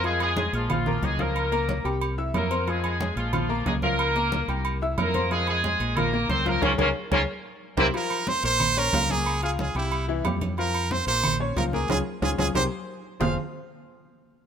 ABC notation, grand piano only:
X:1
M:4/4
L:1/8
Q:1/4=182
K:Fm
V:1 name="Grand piano"
[F,Ff]2 [A,Aa]2 [F,Ff] [B,Bb]2 [F,Ff]- | [F,Ff] [B,Bb]2 [G,Gg]2 [=E=e=e']2 [Ccc'] | [F,Ff]2 [A,Aa]2 [F,Ff] [B,Bb]2 [F,Ff]- | [F,Ff] [B,Bb]2 [G,Gg]2 [=E=e=e']2 [Ccc'] |
[F,Ff]2 [A,Aa]2 [F,Ff] [B,Bb]2 [F,Ff] | [ABd] [ABd] z [ABd] z3 [GBc] | [F,Ff]2 [Ccc'] [B,Bb]2 [Ddd'] [F,Ff] [B,Bb]- | [B,Bb] [Fff']2 [G,Gg]2 [=E,=E=e] [G,Gg]2 |
[F,Ff]2 [Ccc'] [B,Bb]2 [Ddd'] [F,Ff] [B,Bb] | [DFA] z [DFA] [DFA] [GBc] z3 | [F,CFAcf] z6 z |]